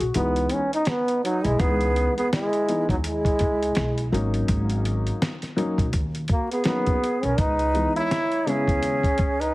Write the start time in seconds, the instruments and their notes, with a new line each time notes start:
0.00 upright bass A#1, upright piano F#4, closed hi-hat
0.14 upright bass C#2, upright piano E3 G#3 B3 D#4, trombone B3, closed hi-hat
0.36 closed hi-hat
0.49 trombone C#4, closed hi-hat
0.73 trombone D#4, closed hi-hat
0.85 trombone B3, snare, closed hi-hat
1.08 closed hi-hat
1.24 trombone F#3, flute D#4, closed hi-hat
1.44 upright bass B1, trombone G#3, flute E4, closed hi-hat
1.59 upright bass C#2, upright piano E3 G#3 B3 D#4, trombone B3, flute G#4, kick, closed hi-hat
1.81 closed hi-hat
1.96 closed hi-hat
2.17 trombone B3, flute G#4, closed hi-hat
2.33 trombone G#3, flute E4, snare, closed hi-hat
2.53 closed hi-hat
2.68 upright piano E3 G#3 B3 D#4, closed hi-hat
2.89 upright bass D#2, trombone F#3, flute D#4, kick, closed hi-hat
3.04 trombone G#3, flute E4, closed hi-hat
3.25 kick, closed hi-hat
3.39 upright bass C#2, kick, closed hi-hat
3.63 closed hi-hat
3.75 upright bass B1, snare, closed hi-hat
3.98 closed hi-hat
4.12 upright bass G#1, upright piano F#3 A#3 C#4 D#4, closed hi-hat
4.34 closed hi-hat
4.48 upright bass G#1, kick, closed hi-hat
4.70 closed hi-hat
4.85 closed hi-hat
5.07 closed hi-hat
5.22 snare, closed hi-hat
5.42 snare, closed hi-hat
5.56 upright piano F#3 A#3 C#4 D#4, closed hi-hat
5.78 upright bass A#1, kick, closed hi-hat
5.93 upright bass D#2, kick, closed hi-hat
6.15 closed hi-hat
6.28 trombone A#3, flute F#4, kick, closed hi-hat
6.51 trombone B3, flute G#4, closed hi-hat
6.64 upright piano F#3 A#3 C#4 D#4, trombone B3, snare, closed hi-hat
6.68 flute G#4
6.86 kick, closed hi-hat
7.04 closed hi-hat
7.23 upright bass B1, trombone C#4, flute A#4, closed hi-hat
7.38 upright bass C#2, trombone D#4, flute B4, kick, closed hi-hat
7.59 closed hi-hat
7.74 upright piano E3 G#3 B3 D#4, closed hi-hat
7.96 trombone E4, flute C#5, closed hi-hat
8.11 snare, closed hi-hat
8.32 closed hi-hat
8.46 upright piano C#3 G#3 B3 E4, trombone C#4, flute G#4, closed hi-hat
8.68 upright bass D#2, kick, closed hi-hat
8.83 closed hi-hat
9.03 kick, closed hi-hat
9.18 upright bass C#2, kick, closed hi-hat
9.40 trombone D#4, flute B4, closed hi-hat